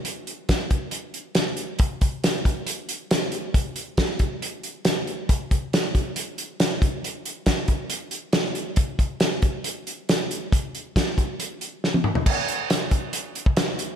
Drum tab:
CC |----------------|----------------|----------------|----------------|
HH |x-x-x-x-x-x-x-x-|x-x-x-x-x-x-x-x-|x-x-x-x-x-x-x-x-|x-x-x-x-x-x-x-x-|
SD |----o-------o---|----o-------o---|----o-------o---|----o-------o---|
T1 |----------------|----------------|----------------|----------------|
T2 |----------------|----------------|----------------|----------------|
FT |----------------|----------------|----------------|----------------|
BD |----o-o---------|o-o---o---------|o---o-o---------|o-o---o-------o-|

CC |----------------|----------------|----------------|x---------------|
HH |x-x-x-x-x-x-x-x-|x-x-x-x-x-x-x-x-|x-x-x-x-x-x-----|--x-x-x-x-x-x-x-|
SD |----o-------o---|----o-------o---|----o-------o---|----o-------o---|
T1 |----------------|----------------|-------------o--|----------------|
T2 |----------------|----------------|--------------o-|----------------|
FT |----------------|----------------|---------------o|----------------|
BD |----o-o---------|o-o---o---------|o---o-o---------|o-----o----o----|